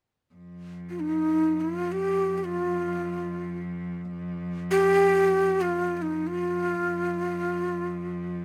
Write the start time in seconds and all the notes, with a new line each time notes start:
0.34 F2
0.90 F4
1.00 D#4
1.61 F4
1.92 G4
2.38 G4
2.44 F4
4.71 G4
5.61 F4
5.97 F4
6.02 D#4
6.27 F4
6.84 F2